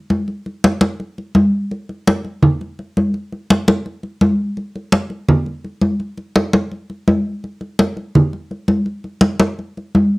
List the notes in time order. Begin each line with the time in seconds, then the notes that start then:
0.10 high conga
0.28 high conga
0.46 high conga
0.64 high conga
0.81 high conga
1.00 high conga
1.18 high conga
1.35 high conga
1.71 high conga
1.89 high conga
2.08 high conga
2.25 high conga
2.43 high conga, low conga
2.61 high conga
2.79 high conga
2.97 high conga
3.14 high conga
3.32 high conga
3.50 high conga
3.68 high conga
3.86 high conga
4.03 high conga
4.21 high conga
4.57 high conga
4.75 high conga
4.92 high conga
5.10 high conga
5.29 high conga, low conga
5.46 high conga
5.64 high conga
5.82 high conga
6.00 high conga
6.18 high conga
6.36 high conga
6.53 high conga
6.72 high conga
6.90 high conga
7.08 high conga
7.44 high conga
7.61 high conga
7.79 high conga
7.97 high conga
8.15 high conga, low conga
8.33 high conga
8.51 high conga
8.68 high conga
8.86 high conga
9.04 high conga
9.21 high conga
9.39 high conga
9.59 high conga
9.77 high conga
9.95 high conga